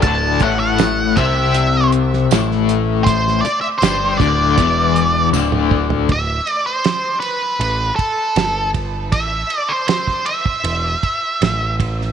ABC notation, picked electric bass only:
X:1
M:4/4
L:1/8
Q:1/4=79
K:Dmix
V:1 name="Picked electric bass" clef=bass
D,,, A,,,2 C,,3 A,,,2- | A,,, z G,,, D,,, E,,,2 D,,,2 | D,,, z3 A,,, z G,,,2 | A,,, z3 E,,, z A,,,2 |]